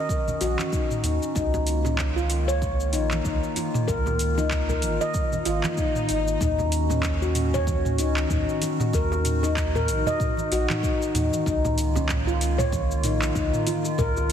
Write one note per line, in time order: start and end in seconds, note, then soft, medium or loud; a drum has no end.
0.00 1.31 D#3 medium
0.00 1.31 C#4 medium
0.00 1.31 F#4 medium
0.00 0.40 D#5 medium
0.09 kick loud
0.09 cabasa soft
0.28 low conga medium
0.28 cabasa soft
0.41 0.56 A#1 medium
0.41 0.58 F#4 loud
0.41 open hi-hat medium
0.41 cabasa medium
0.59 clap medium
0.59 high bongo soft
0.59 high conga medium
0.59 cabasa soft
0.73 0.90 D#4 medium
0.73 kick loud
0.73 cabasa soft
0.90 mid tom medium
0.90 cabasa soft
1.03 1.19 D#2 medium
1.03 1.34 D#4 medium
1.03 open hi-hat medium
1.03 cabasa medium
1.22 cabasa soft
1.35 2.95 C#2 loud
1.35 6.37 D#3 medium
1.35 6.37 A#3 medium
1.35 1.84 D#4 loud
1.35 6.37 F4 medium
1.35 kick medium
1.35 high bongo medium
1.35 cabasa soft
1.54 high bongo medium
1.54 low conga medium
1.54 cabasa soft
1.67 open hi-hat medium
1.67 cabasa medium
1.85 2.15 C#4 medium
1.85 mid tom medium
1.85 high bongo medium
1.85 cabasa soft
1.99 kick medium
1.99 clap medium
1.99 cabasa soft
2.16 2.46 F4 medium
2.16 cabasa soft
2.30 open hi-hat medium
2.30 cabasa medium
2.48 2.61 C#5 loud
2.48 cabasa soft
2.62 kick loud
2.62 cabasa soft
2.80 cabasa soft
2.93 3.21 A#1 medium
2.93 3.11 D#4 medium
2.93 open hi-hat medium
2.93 cabasa medium
3.11 clap medium
3.11 high conga medium
3.11 cabasa soft
3.25 3.40 C#2 medium
3.25 3.42 D#4 medium
3.25 kick loud
3.25 cabasa soft
3.43 cabasa soft
3.56 3.67 F4 medium
3.56 open hi-hat medium
3.56 high conga medium
3.56 cabasa medium
3.74 mid tom medium
3.74 high bongo soft
3.74 cabasa soft
3.88 4.84 C#2 loud
3.88 3.98 A#4 loud
3.88 kick loud
3.88 high bongo soft
3.88 cabasa soft
4.06 mid tom medium
4.06 high bongo medium
4.06 low conga medium
4.06 cabasa soft
4.19 open hi-hat medium
4.19 cabasa medium
4.37 4.51 D#4 medium
4.37 high bongo medium
4.37 high conga medium
4.37 cabasa soft
4.51 kick loud
4.51 clap medium
4.51 cabasa soft
4.69 4.77 A#4 medium
4.69 low conga medium
4.69 cabasa soft
4.82 4.98 G#1 medium
4.82 open hi-hat medium
4.82 high conga medium
4.82 cabasa medium
5.01 5.45 D#5 loud
5.01 cabasa soft
5.14 kick loud
5.14 swell medium
5.14 cabasa soft
5.32 high conga medium
5.32 low conga medium
5.32 cabasa soft
5.45 5.61 G#1 medium
5.45 5.63 F4 loud
5.45 open hi-hat medium
5.45 cabasa medium
5.64 clap medium
5.64 high bongo medium
5.64 high conga medium
5.64 cabasa soft
5.78 5.95 D#4 medium
5.78 kick loud
5.78 cabasa soft
5.95 mid tom medium
5.95 cabasa soft
6.09 6.37 G#1 medium
6.09 6.40 D#4 medium
6.09 open hi-hat medium
6.09 cabasa medium
6.28 cabasa soft
6.40 8.00 D#2 loud
6.40 14.32 D#3 medium
6.40 8.91 C#4 medium
6.40 6.89 D#4 loud
6.40 11.42 F#4 medium
6.40 kick loud
6.40 mid tom medium
6.40 high bongo soft
6.40 cabasa soft
6.58 high bongo medium
6.58 low conga medium
6.58 cabasa soft
6.72 open hi-hat medium
6.72 cabasa medium
6.90 7.20 C#4 medium
6.90 mid tom medium
6.90 high bongo medium
6.90 low conga medium
6.90 cabasa soft
7.03 kick loud
7.03 clap medium
7.03 cabasa soft
7.22 7.52 F#4 medium
7.22 cabasa soft
7.35 mid tom medium
7.35 open hi-hat medium
7.35 cabasa medium
7.54 7.67 C#5 loud
7.54 low conga loud
7.54 cabasa soft
7.67 kick loud
7.67 high conga medium
7.67 cabasa soft
7.85 mid tom medium
7.85 cabasa soft
7.98 8.26 C#2 medium
7.98 8.16 D#4 medium
7.98 open hi-hat medium
7.98 cabasa medium
8.17 clap medium
8.17 cabasa soft
8.30 8.45 D#2 medium
8.30 8.48 D#4 medium
8.30 kick loud
8.30 mid tom medium
8.30 cabasa soft
8.49 cabasa soft
8.61 8.73 F#4 medium
8.61 open hi-hat loud
8.61 high conga soft
8.61 cabasa medium
8.80 mid tom medium
8.80 high bongo medium
8.80 cabasa soft
8.92 9.90 D#2 loud
8.92 11.43 D#4 medium
8.92 9.04 A#4 medium
8.92 kick loud
8.92 high bongo soft
8.92 cabasa soft
9.12 high bongo medium
9.12 cabasa soft
9.25 mid tom medium
9.25 open hi-hat medium
9.25 cabasa medium
9.43 9.56 D#4 medium
9.43 high bongo medium
9.43 cabasa soft
9.57 kick loud
9.57 clap medium
9.57 cabasa soft
9.75 9.83 A#4 loud
9.75 mid tom medium
9.75 cabasa soft
9.88 10.04 A#1 medium
9.88 open hi-hat loud
9.88 cabasa medium
10.06 10.50 D#5 loud
10.06 low conga loud
10.06 cabasa soft
10.20 kick loud
10.20 mid tom medium
10.20 cabasa soft
10.37 high conga medium
10.37 cabasa soft
10.51 10.66 A#1 medium
10.51 10.69 F#4 loud
10.51 open hi-hat medium
10.51 cabasa medium
10.69 clap medium
10.69 mid tom medium
10.69 high bongo medium
10.69 high conga medium
10.69 cabasa soft
10.83 11.00 D#4 medium
10.83 kick loud
10.83 cabasa soft
11.02 cabasa soft
11.14 11.29 D#2 medium
11.14 11.45 D#4 medium
11.14 mid tom medium
11.14 open hi-hat medium
11.14 high bongo soft
11.14 high conga soft
11.14 cabasa medium
11.33 high conga medium
11.33 cabasa soft
11.46 13.05 C#2 loud
11.46 13.96 A#3 medium
11.46 11.94 D#4 loud
11.46 14.32 F4 medium
11.46 kick loud
11.46 high bongo soft
11.46 cabasa soft
11.64 mid tom medium
11.64 high bongo medium
11.64 low conga medium
11.64 cabasa soft
11.78 open hi-hat medium
11.78 cabasa medium
11.95 12.26 C#4 medium
11.95 high bongo medium
11.95 low conga medium
11.95 cabasa soft
12.09 kick loud
12.09 clap medium
12.09 mid tom medium
12.09 cabasa soft
12.27 12.57 F4 loud
12.27 cabasa soft
12.41 open hi-hat medium
12.41 cabasa medium
12.58 12.71 C#5 loud
12.58 mid tom medium
12.58 low conga loud
12.58 cabasa soft
12.73 kick loud
12.73 high conga medium
12.73 cabasa soft
12.91 cabasa soft
13.03 13.31 A#1 medium
13.03 13.21 D#4 medium
13.03 mid tom medium
13.03 open hi-hat medium
13.03 cabasa medium
13.22 clap medium
13.22 cabasa soft
13.35 13.51 C#2 medium
13.35 13.53 D#4 medium
13.35 kick loud
13.35 cabasa soft
13.53 mid tom medium
13.53 cabasa soft
13.67 13.78 F4 medium
13.67 open hi-hat medium
13.67 high conga soft
13.67 cabasa medium
13.84 high bongo soft
13.84 cabasa soft
13.98 14.32 C#2 loud
13.98 14.32 G#3 medium
13.98 14.09 A#4 loud
13.98 kick loud
13.98 mid tom medium
13.98 high bongo medium
13.98 cabasa soft
14.17 high bongo medium
14.17 cabasa soft